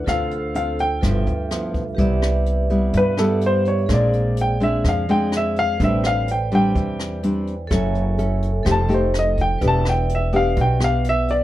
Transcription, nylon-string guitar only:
0.06 D3 C4 F4 A4
0.54 C4 F4 A4
1.02 G2 F3 B3 E4
1.51 F3 B3 E4
1.98 C3 G3 B3 E4
2.70 G3 B3 E4
2.94 G2
3.18 G3 B3 E4
3.89 A#2 G#3 C4 D4
4.60 G#3 C4 D4
4.85 F3
5.09 G#3 C4 D4
5.80 A2 G3 C4 D4
6.52 G3 C4 D4
6.76 E3
7.23 G3 C4 D4
7.70 F#3 C#4 E4 A4
8.18 C#4 E4 A4
8.65 F3 A3 D#4 G4
8.89 A3 D#4 G4
9.61 E3 B3 D4 G4
10.33 B3 D4 G4
10.57 B2
10.80 B3 D4 G4

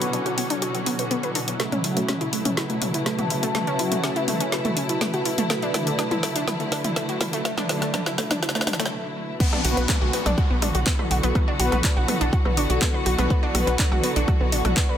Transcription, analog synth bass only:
0.02 B1
0.26 B1
0.50 B1
0.75 B1
0.86 A1
0.99 B1
1.35 B1
1.48 B1
1.84 F#1
2.46 F#1
2.70 F#1
2.94 F#1
3.30 F#1
3.43 F#1
3.79 F#1
4.40 F#1
4.65 F#1
5.74 D2
5.87 D2
6.11 D2
6.36 D2
6.60 D2
6.85 D2
7.21 D2
7.33 D2
7.70 D2
7.82 D2
8.07 D2
8.31 D2
8.55 D2
8.67 D2
8.80 D2
9.65 B1
9.77 B1
10.02 B1
10.26 B1
10.50 B1
10.62 A1
10.75 B1
11.11 B1
11.23 B1
11.60 B1
11.72 B1
11.96 B1
12.21 B1
12.45 B1
12.57 A1
12.70 B1
13.06 B1
13.19 B1
13.55 B1
13.67 B1
13.92 B1
14.16 B1
14.40 B1
14.52 A1
14.65 B1

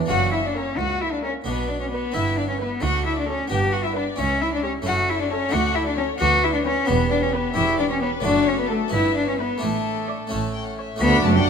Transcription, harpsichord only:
0.06 A#3 C#4 E4
0.10 F#2
0.79 C#2
1.44 B2 B3 D4
2.12 G2 B3 E4
2.80 D2 A3 D4
3.48 G2 B3 D4
4.16 C#2 C#4 E4
4.82 A3 C#4 E4
4.86 F#2
5.49 A3 D4
5.54 D2
6.18 D2 B3 D4
6.85 E2 B3 G4
7.54 E2 C#4 G4
8.20 A3 D4 F#4
8.25 F#2
8.88 B3 E4
8.92 G2
9.58 A3 D4 E4
9.62 A2
10.27 A3 C#4 E4
10.32 A2
10.96 A3 D4 F#4
11.01 D2
11.24 F#2

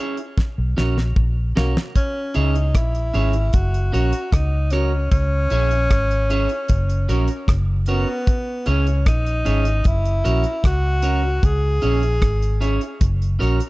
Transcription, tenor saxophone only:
Already playing: C#4
1.57 A#3
1.96 C#4
2.36 D#4
2.76 E4
3.54 F#4
3.94 F#4
4.33 D#4
4.72 C#4
5.11 C#4
7.89 B3
8.68 C#4
9.08 D#4
9.87 E4
10.66 F#4
11.45 G#4

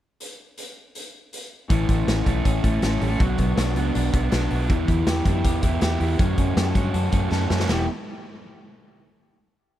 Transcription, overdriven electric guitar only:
1.70 A2 E3 A3 C#4 E4 A4
2.26 A3 C#4 E4 A4
2.64 A3 C#4 E4 A4
2.83 A3 C#4 E4 A4
3.01 A3 C#4 E4 A4
3.20 B2 F#3 B3 D4 F#4
3.76 F#3 B3 D4 F#4
4.13 F#3 B3 D4 F#4
4.32 F#3 B3 D4 F#4
4.51 F#3 B3 D4 F#4
4.69 E3 B3 E4 G4
5.25 E3 B3 E4 G4
5.62 E3 B3 E4 G4
5.81 E3 B3 E4 G4
6.00 E3 B3 E4 G4
6.18 F#3 A3 C#4 F#4
6.75 F#3 A3 C#4 F#4
7.12 F#3 A3 C#4 F#4
7.30 F#3 A3 C#4 F#4
7.50 F#3 A3 C#4 F#4
7.68 E3 B3 E4 G4

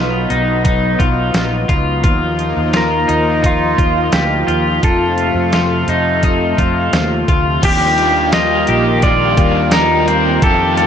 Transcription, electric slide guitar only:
Already playing: B4
2.77 A#4
3.46 F4
4.14 G4
4.84 A4
7.65 G4
8.34 D#5
9.03 D5
9.73 A#4
10.43 A4
10.78 A4

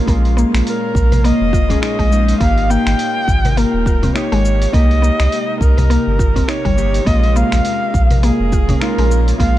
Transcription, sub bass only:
0.07 A#1
0.54 A#1
0.95 A#1
1.41 F1
1.99 A#1
2.41 G#1
2.86 G#1
3.28 G#1
3.74 D#1
4.32 G#1
4.73 C2
5.20 C2
5.61 C2
6.07 G1
6.65 G1
7.07 A#1
7.52 A#1
7.94 A#1
8.40 F1
8.98 A#1
9.39 A#1

